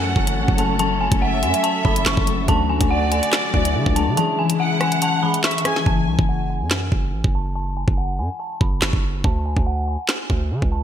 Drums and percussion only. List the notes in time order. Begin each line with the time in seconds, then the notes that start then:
0.16 kick
0.27 closed hi-hat
0.48 kick
0.58 closed hi-hat
0.79 closed hi-hat
1.12 kick, closed hi-hat
1.43 closed hi-hat
1.54 closed hi-hat
1.64 closed hi-hat
1.85 kick
1.96 closed hi-hat
2.06 snare, clap, closed hi-hat
2.17 kick
2.27 closed hi-hat
2.48 kick, closed hi-hat
2.81 kick, closed hi-hat
3.12 closed hi-hat
3.23 closed hi-hat
3.33 snare, clap
3.54 kick
3.65 closed hi-hat
3.86 kick
3.96 closed hi-hat
4.17 closed hi-hat
4.50 closed hi-hat
4.81 cross-stick, closed hi-hat
4.92 closed hi-hat
5.02 closed hi-hat
5.34 closed hi-hat
5.44 snare, clap, closed hi-hat
5.51 closed hi-hat
5.58 closed hi-hat
5.65 cross-stick, closed hi-hat
5.76 snare
5.86 kick
6.19 kick
6.71 snare, clap
6.92 kick
7.24 kick
7.88 kick
8.61 kick
8.82 snare, clap
8.93 kick
9.24 kick
9.57 kick
10.09 snare, clap
10.30 kick
10.62 kick